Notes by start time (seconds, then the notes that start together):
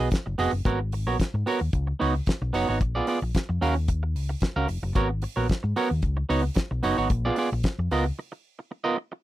0.11 muted clean electric guitar stroke, kick, snare, closed hi-hat
0.26 F#1, muted clean electric guitar stroke
0.38 F1 B3 F#4 G#4 D#5, open hi-hat
0.53 F#1, muted clean electric guitar stroke
0.65 G#1 B3 F#4 A#4 C#5, kick, closed hi-hat
0.80 muted clean electric guitar stroke
0.92 muted clean electric guitar stroke, open hi-hat
1.07 A#1 B3 F#4 A#4 C#5
1.20 muted fingered electric bass stroke, kick, snare, closed hi-hat
1.34 G#2, muted clean electric guitar stroke
1.46 B3 F#4 A#4 C#5, open hi-hat
1.61 D#2
1.73 C#2, kick, closed hi-hat
1.87 muted clean electric guitar stroke
2.00 C#2 B3 D#4 F#4 C#5, open hi-hat
2.26 muted clean electric guitar stroke, kick, snare, closed hi-hat
2.42 B1, muted clean electric guitar stroke
2.53 F#1 B3 D#4 F#4 C#5, open hi-hat
2.69 G#1 B3 D#4 F#4 C#5
2.81 A#1, muted clean electric guitar stroke, kick, closed hi-hat
2.95 B3 F4 G#4 D5
3.07 B3 F4 G#4 D5, open hi-hat
3.22 A#1, muted clean electric guitar stroke
3.34 muted clean electric guitar stroke, kick, snare, closed hi-hat
3.49 F2, muted clean electric guitar stroke
3.61 D#2 C#4 F#4 A#4 F5, open hi-hat
3.76 muted clean electric guitar stroke
3.88 muted clean electric guitar stroke, kick, closed hi-hat
4.03 muted clean electric guitar stroke
4.15 C#2, open hi-hat
4.29 muted clean electric guitar stroke
4.40 muted clean electric guitar stroke, kick, snare, closed hi-hat
4.56 C#2 C#4 F#4 A#4 F5
4.68 F1, muted clean electric guitar stroke, open hi-hat
4.83 F#1, muted clean electric guitar stroke
4.95 G#1 B3 F#4 A#4 C#5, kick, closed hi-hat
5.09 muted clean electric guitar stroke
5.22 muted clean electric guitar stroke, open hi-hat
5.36 A#1 B3 F#4 A#4 C#5
5.49 kick, snare, closed hi-hat
5.63 G#2, muted clean electric guitar stroke
5.76 B3 F#4 A#4 C#5, open hi-hat
5.90 D#2, muted clean electric guitar stroke
6.02 C#2, kick, closed hi-hat
6.17 muted clean electric guitar stroke
6.29 C#2 B3 D#4 F#4 C#5, open hi-hat
6.43 muted clean electric guitar stroke
6.54 muted clean electric guitar stroke, kick, snare, closed hi-hat
6.71 B1, muted clean electric guitar stroke
6.83 F#1 B3 D#4 F#4 C#5, open hi-hat
6.98 G#1 B3 D#4 F#4 C#5
7.10 A#1, muted clean electric guitar stroke, kick, closed hi-hat
7.25 B3 F4 G#4 D5
7.36 B3 F4 G#4 D5, open hi-hat
7.52 A#1, muted clean electric guitar stroke
7.63 muted clean electric guitar stroke, kick, snare, closed hi-hat
7.79 F2, muted clean electric guitar stroke
7.91 C#2 B3 F4 A#4 D#5, open hi-hat
8.05 muted clean electric guitar stroke
8.19 muted clean electric guitar stroke
8.32 muted clean electric guitar stroke
8.59 muted clean electric guitar stroke
8.71 muted clean electric guitar stroke
8.84 B3 F4 A#4 D#5
8.97 muted clean electric guitar stroke
9.12 muted clean electric guitar stroke